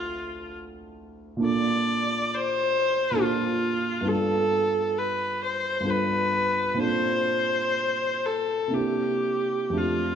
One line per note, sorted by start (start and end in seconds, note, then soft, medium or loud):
0.00 1.37 D2 soft
0.00 1.38 C4 soft
0.00 1.39 D4 soft
0.00 1.40 E4 soft
0.00 0.56 F4 medium
0.00 1.41 A4 soft
1.37 3.10 A#2 soft
1.37 3.12 A#3 soft
1.37 3.14 D4 soft
1.42 3.15 F4 soft
1.42 3.17 A4 soft
1.42 2.36 D5 medium
2.34 3.23 C5 medium
3.11 4.01 A#2 soft
3.11 4.02 A#3 soft
3.16 4.03 D4 soft
3.16 4.04 F4 soft
3.16 4.05 A4 soft
3.22 4.10 F4 medium
4.01 5.79 G2 soft
4.01 5.81 B3 soft
4.01 5.82 D4 soft
4.05 5.84 F4 soft
4.05 5.85 A4 soft
4.05 5.00 A4 medium
4.99 5.43 B4 medium
5.44 5.91 C5 medium
5.80 6.75 G2 soft
5.80 6.76 B3 soft
5.80 6.76 D4 soft
5.85 6.78 F4 soft
5.85 6.79 A4 soft
5.90 6.82 B4 medium
6.74 8.67 A#2 soft
6.74 8.68 C4 soft
6.74 8.69 D4 soft
6.80 8.70 F4 soft
6.80 8.71 A4 soft
6.80 8.27 C5 medium
8.26 8.76 A4 medium
8.68 9.71 C3 soft
8.68 9.72 A#3 soft
8.68 9.71 D4 soft
8.72 9.73 E4 soft
8.72 9.79 G4 medium
8.72 9.74 A4 soft
9.70 10.15 F2 soft
9.70 10.15 A3 soft
9.70 10.15 D4 soft
9.75 10.15 F4 soft
9.75 10.15 F4 medium
9.75 10.15 G4 soft